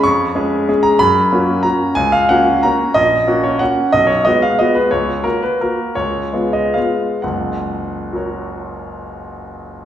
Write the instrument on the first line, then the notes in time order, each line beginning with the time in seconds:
grand piano
0.03 F2 C#6
0.35 G#3 C#4 G#4
0.69 G#3 C#4 G#4
0.83 A#5
0.99 F#2 B5
1.32 A#3 C#4 F#4
1.63 A#3 C#4 F#4 A#5
1.95 C#2 G#5
2.12 F5
2.29 A#3 C#4 F#4 F#5
2.63 A#3 C#4 F#4 A#5
2.94 A#1 D#5
3.27 A#3 C#4 F#4
3.44 C#5
3.59 A#3 C#4 F#4 F#5
3.93 B1 D#5
4.07 C#5
4.25 G#3 B3 F#4 D#5
4.42 F5
4.59 G#3 B3 F#4 D#5
4.75 B4
4.91 C#2 C#5
5.24 A#3 F#4 A#4
5.42 B4
5.61 A#3 F#4 A#4
5.95 C#2 C#5
6.33 G#3 B3 F4
6.53 D#5
6.74 G#3 B3 F4 F5
7.22 F#1 C#2 F#5
8.13 F#4 A#4 C#5